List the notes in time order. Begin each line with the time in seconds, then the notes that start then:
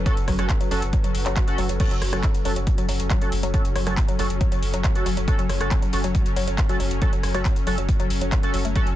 Already playing: F#3 C#4 F#4 A4 B4
0.06 F#3 C#4 F#4 A4, kick, closed hi-hat
0.17 F#1, closed hi-hat
0.28 F#1 F#3, kick, cross-stick, open hi-hat
0.39 F#1 F#3 C#4 F#4 A4, cross-stick, closed hi-hat
0.49 kick, clap, closed hi-hat
0.61 F#3, closed hi-hat
0.71 F#1 F#3 C#4 F#4 A4, open hi-hat
0.82 F#1, closed hi-hat
0.93 F#3, kick, closed hi-hat, swell
1.04 F#1 F#3, closed hi-hat
1.15 F#1, open hi-hat
1.26 F#1 F#3, clap, closed hi-hat
1.36 kick, clap, closed hi-hat
1.48 C#4 F#4 A4, closed hi-hat
1.58 F#1 F#3, open hi-hat
1.69 F#1 F#3, closed hi-hat
1.80 F#3 C#4 F#4 A4, kick, closed hi-hat, crash
1.91 F#1 F#3, closed hi-hat
2.02 F#1, cross-stick, open hi-hat
2.13 F#1 F#3 C#4 F#4 A4 C#5, cross-stick, closed hi-hat
2.23 F#3, kick, clap, closed hi-hat
2.35 closed hi-hat
2.45 F#1 F#3 C#4 F#4 A4, open hi-hat
2.56 F#1 F#3, closed hi-hat
2.67 kick, closed hi-hat
2.78 F#1 F#3, closed hi-hat
2.89 F#1 F#3, open hi-hat
3.00 F#1, closed hi-hat
3.10 F#3, kick, clap, closed hi-hat
3.21 F#3 C#4 F#4 A4, closed hi-hat
3.32 F#1, open hi-hat
3.43 F#1 F#3, closed hi-hat
3.54 F#3 C#4 F#4 A4, kick, closed hi-hat
3.65 F#1, closed hi-hat
3.76 F#1 F#3, cross-stick, open hi-hat
3.87 F#1 F#3 C#4 F#4 A4, cross-stick, closed hi-hat
3.97 kick, clap, closed hi-hat
4.08 F#3, closed hi-hat
4.19 F#1 F#3 C#4 F#4 A4, open hi-hat
4.30 F#1, closed hi-hat
4.41 F#3, kick, closed hi-hat
4.52 F#1 F#3, closed hi-hat
4.62 F#1, open hi-hat
4.74 F#1 F#3, closed hi-hat
4.84 F#3, kick, clap, closed hi-hat
4.95 C#4 F#4 A4, closed hi-hat
5.06 F#1 F#3, open hi-hat
5.17 F#1 F#3, closed hi-hat
5.28 C#4 F#4 A4, kick, closed hi-hat
5.39 F#1 F#3, closed hi-hat
5.49 F#1 F#3, cross-stick, open hi-hat
5.61 F#1 C#4 F#4 A4, cross-stick, closed hi-hat
5.71 F#3, kick, clap, closed hi-hat
5.82 F#3, closed hi-hat
5.93 F#1 C#4 F#4 A4, open hi-hat
6.04 F#1 F#3, closed hi-hat
6.15 F#3, kick, closed hi-hat
6.26 F#1, closed hi-hat
6.36 F#1 F#3, open hi-hat
6.47 F#1 F#3, closed hi-hat
6.58 kick, clap, closed hi-hat
6.69 F#3 C#4 F#4 A4, closed hi-hat
6.80 F#1 F#3, open hi-hat
6.91 F#1, closed hi-hat
7.02 F#3 C#4 F#4 A4, kick, closed hi-hat
7.13 F#1 F#3, closed hi-hat
7.23 F#1, cross-stick, open hi-hat
7.34 F#1 F#3 C#4 F#4 A4, cross-stick, closed hi-hat
7.45 F#3, kick, clap, closed hi-hat
7.56 closed hi-hat
7.67 F#1 F#3 C#4 F#4 A4, open hi-hat
7.78 F#1 F#3, closed hi-hat
7.89 kick, closed hi-hat
8.00 F#1 F#3, closed hi-hat
8.10 F#1, open hi-hat
8.21 F#1 F#3, closed hi-hat
8.32 F#3, kick, clap, closed hi-hat
8.43 C#4 F#4 A4, closed hi-hat
8.54 F#1 F#3, open hi-hat
8.65 F#1 A3, closed hi-hat
8.76 F#3 C#4 F#4 A4, kick, closed hi-hat
8.87 F#1, closed hi-hat